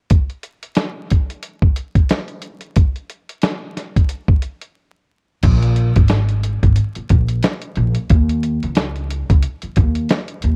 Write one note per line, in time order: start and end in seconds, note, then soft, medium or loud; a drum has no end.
0.09 kick loud
0.09 closed hi-hat medium
0.29 closed hi-hat soft
0.43 closed hi-hat medium
0.63 closed hi-hat medium
0.75 snare loud
0.75 closed hi-hat medium
1.10 kick medium
1.10 closed hi-hat medium
1.30 closed hi-hat medium
1.43 closed hi-hat medium
1.62 kick loud
1.76 closed hi-hat medium
1.95 kick medium
1.95 closed hi-hat medium
2.09 snare loud
2.09 closed hi-hat medium
2.28 closed hi-hat soft
2.42 closed hi-hat medium
2.61 closed hi-hat medium
2.76 kick loud
2.76 closed hi-hat medium
2.96 closed hi-hat soft
3.10 closed hi-hat medium
3.29 closed hi-hat medium
3.42 snare loud
3.42 closed hi-hat medium
3.77 snare soft
3.77 closed hi-hat medium
3.96 kick medium
3.96 closed hi-hat medium
4.09 closed hi-hat medium
4.29 kick loud
4.42 closed hi-hat medium
4.62 closed hi-hat medium
5.43 5.90 A#1 loud
5.43 kick loud
5.43 closed hi-hat medium
5.43 crash medium
5.62 closed hi-hat medium
5.76 closed hi-hat medium
5.96 6.55 G#1 medium
5.96 kick loud
5.96 closed hi-hat medium
6.08 snare loud
6.08 closed hi-hat medium
6.29 closed hi-hat medium
6.44 closed hi-hat medium
6.63 6.75 G#1 medium
6.63 kick loud
6.63 closed hi-hat medium
6.76 closed hi-hat medium
6.95 muted upright bass stroke soft
6.95 closed hi-hat soft
7.09 7.40 A#1 medium
7.09 kick medium
7.09 closed hi-hat medium
7.28 closed hi-hat medium
7.43 snare loud
7.43 closed hi-hat medium
7.62 closed hi-hat medium
7.76 7.94 A#1 medium
7.76 closed hi-hat medium
7.95 closed hi-hat medium
8.10 8.57 D#2 loud
8.10 kick loud
8.10 closed hi-hat medium
8.29 closed hi-hat medium
8.43 closed hi-hat medium
8.63 9.22 C#2 medium
8.63 closed hi-hat medium
8.75 snare loud
8.75 closed hi-hat medium
8.95 closed hi-hat medium
9.10 closed hi-hat medium
9.30 9.42 C#2 medium
9.30 kick loud
9.30 closed hi-hat medium
9.43 closed hi-hat medium
9.62 muted upright bass stroke soft
9.62 closed hi-hat soft
9.76 10.06 D#2 loud
9.76 kick medium
9.76 closed hi-hat medium
9.95 closed hi-hat medium
10.09 snare loud
10.09 closed hi-hat medium
10.28 closed hi-hat soft
10.42 10.56 D#2 medium
10.42 closed hi-hat medium